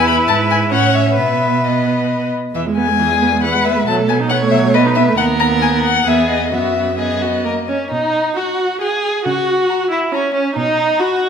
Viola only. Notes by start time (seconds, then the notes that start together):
Already playing: E4
0.72 C#4
1.18 B3
1.63 B3
2.55 E3
2.66 G#3
2.77 B3
2.88 G#3
2.99 E3
3.11 G#3
3.22 B3
3.33 G#3
3.43 E3
3.54 G#3
3.67 B3
3.77 G#3
3.88 F#3
3.99 A3
4.10 B3
4.20 D#4
4.31 B3
4.42 A3
4.53 F#3
4.64 A3
4.76 B3
4.86 D#4
4.97 B3
5.09 A3
5.20 B3
6.06 B3
6.52 B3
6.98 B3
7.45 A#3
7.69 C#4
7.91 D#4
8.37 F#4
8.81 G#4
9.25 F#4
9.90 E4
10.12 C#4
10.33 C#4
10.55 D#4
11.01 F#4